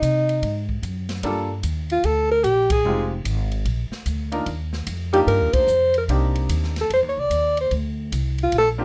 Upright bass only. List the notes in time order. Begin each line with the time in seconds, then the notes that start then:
0.02 C3
0.42 G#2
0.83 F#2
1.23 G2
1.63 D#2
2.04 D2
2.44 A#1
2.85 F1
3.25 G#1
3.65 A#1
3.91 muted upright bass stroke
4.06 D2
4.46 D#2
4.87 F2
5.27 G2
5.41 D#2
5.53 D2
5.67 F2
6.08 C2
6.49 D#2
6.90 F2
7.03 D#2
7.17 C2
7.30 D#2
7.71 D2
8.12 C2
8.52 A#1